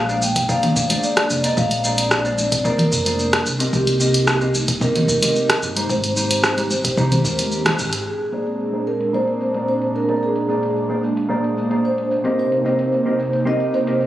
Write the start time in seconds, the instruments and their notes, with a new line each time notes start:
Already playing: upright bass A#1, analog synth pad G#3 A#3 D4, vibraphone F5
0.08 clean electric guitar A#3 G#4 C5 D5, shaker
0.22 vibraphone G5, high conga, shaker
0.36 kick, closed hi-hat, shaker
0.48 clean electric guitar A#3 G#4 C5 D5, vibraphone F5, kick, shaker
0.63 closed hi-hat, low conga
0.76 upright bass D2, kick, shaker
0.89 clean electric guitar A#3 G#4 C5 D5, closed hi-hat, high conga, shaker
1.03 vibraphone D5, shaker
1.17 cross-stick, closed hi-hat
1.30 upright bass F1, shaker
1.44 clean electric guitar A#3 G#4 C5 D5, vibraphone D#5, closed hi-hat, shaker
1.57 upright bass A#1, analog synth pad C4, vibraphone F5, kick, high conga, shaker
1.71 closed hi-hat, shaker
1.83 clean electric guitar A#3 G#4 C5 D5, vibraphone D5, shaker
1.98 closed hi-hat, shaker
2.11 vibraphone D5, cross-stick, shaker
2.24 clean electric guitar A#3 G#4 C5 D5, shaker
2.38 high conga, shaker
2.52 kick, closed hi-hat, shaker
2.64 upright bass D2, clean electric guitar A#3 G#4 C5 D5, vibraphone A#4, kick, shaker
2.78 closed hi-hat, low conga
2.92 upright bass F1, kick, shaker
3.05 clean electric guitar A#3 G#4 C5 D5, closed hi-hat, high conga, shaker
3.19 shaker
3.33 cross-stick, closed hi-hat
3.46 upright bass C2, analog synth pad C3 A#3 D#4, shaker
3.59 clean electric guitar C4 G4 A#4 D#5, closed hi-hat, shaker
3.73 upright bass C2, vibraphone G4, kick, high conga, shaker
3.87 closed hi-hat, shaker
4.00 clean electric guitar C4 G4 A#4 D#5, shaker
4.14 closed hi-hat, shaker
4.27 cross-stick, shaker
4.41 clean electric guitar C4 G4 A#4 D#5, shaker
4.54 high conga, shaker
4.68 kick, closed hi-hat, shaker
4.81 clean electric guitar C4 G4 A#4 D#5, vibraphone A#4, kick, shaker
4.96 closed hi-hat, low conga
5.08 upright bass D#2, kick, shaker
5.22 clean electric guitar C4 G4 A#4 D#5, closed hi-hat, high conga, shaker
5.36 shaker
5.50 cross-stick, closed hi-hat
5.63 upright bass G1, shaker
5.76 clean electric guitar G#3 D#4 G4 C5, closed hi-hat, shaker
5.89 upright bass G#1, analog synth pad G#3 C4 G4, vibraphone C5, kick, high conga, shaker
6.04 closed hi-hat, shaker
6.16 clean electric guitar G#3 D#4 G4 C5, shaker
6.31 closed hi-hat, shaker
6.44 cross-stick, shaker
6.57 clean electric guitar G#3 D#4 G4 C5, closed hi-hat, shaker
6.71 high conga, shaker
6.84 kick, closed hi-hat, shaker
6.97 upright bass C2, clean electric guitar G#3 D#4 G4 C5, kick, shaker
7.12 closed hi-hat, low conga, shaker
7.24 upright bass D#2, clean electric guitar G#3 D#4 G4 A#4, kick, shaker
7.39 closed hi-hat, high conga, shaker
7.52 shaker
7.65 clean electric guitar G#3 D#4 G4 C5, cross-stick, closed hi-hat, low conga
7.79 upright bass G#1, shaker
7.93 closed hi-hat, shaker
8.06 analog synth pad A#2 G#3 C4 D4, vibraphone G#4, shaker
8.20 closed hi-hat, shaker
8.32 clean electric guitar A#3 G#4 C5 D5, shaker
8.47 closed hi-hat, shaker
8.60 shaker
8.73 clean electric guitar A#3 G#4 C5 D5, shaker
8.87 vibraphone A#4, shaker
9.01 closed hi-hat, shaker
9.13 clean electric guitar A#3 G#4 C5 D5, vibraphone C5, shaker
9.28 closed hi-hat
9.41 shaker
9.54 clean electric guitar A#3 G#4 C5 D5, closed hi-hat, shaker
9.68 vibraphone C5, shaker
9.82 closed hi-hat
9.95 vibraphone A#4, shaker
10.08 clean electric guitar A#3 G#4 C5 D5, closed hi-hat, shaker
10.16 vibraphone A#4
10.22 analog synth pad A#3, vibraphone G#4, shaker
10.36 closed hi-hat, shaker
10.48 clean electric guitar A#3 G#4 C5 D5, shaker
10.63 closed hi-hat, shaker
10.76 shaker
10.89 clean electric guitar A#3 G#4 C5 D5, shaker
11.03 shaker
11.17 closed hi-hat, shaker
11.29 clean electric guitar A#3 G#4 C5 D5, shaker
11.44 closed hi-hat
11.57 shaker
11.70 clean electric guitar A#3 G#4 C5 D5, closed hi-hat, shaker
11.84 vibraphone C5, shaker
11.98 closed hi-hat
12.11 analog synth pad C3 D#4, shaker
12.24 clean electric guitar C4 G4 A#4 D#5, closed hi-hat, shaker
12.38 vibraphone C5, shaker
12.52 closed hi-hat, shaker
12.64 clean electric guitar C4 G4 A#4 D#5, shaker
12.79 closed hi-hat, shaker
12.92 shaker
13.05 clean electric guitar C4 G4 A#4 D#5, shaker
13.19 shaker
13.33 closed hi-hat, shaker
13.45 clean electric guitar C4 G4 A#4 D#5, vibraphone D#5, shaker
13.60 closed hi-hat
13.74 vibraphone C5, shaker
13.86 clean electric guitar C4 G4 A#4 D#5, closed hi-hat, shaker
14.00 shaker